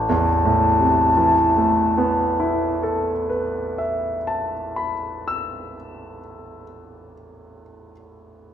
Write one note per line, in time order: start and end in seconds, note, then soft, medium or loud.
0.00 3.12 A1 soft
0.00 3.12 A5 medium
0.09 3.44 E2 soft
0.45 3.80 A2 soft
0.81 4.15 C3 soft
1.17 4.52 E3 soft
1.57 4.92 A3 soft
1.98 5.32 B3 soft
2.40 5.74 E4 soft
2.83 6.18 A4 soft
3.29 6.64 B4 soft
3.78 7.13 E5 soft
4.27 7.62 A5 soft
4.76 7.91 B5 soft
5.28 7.91 E6 soft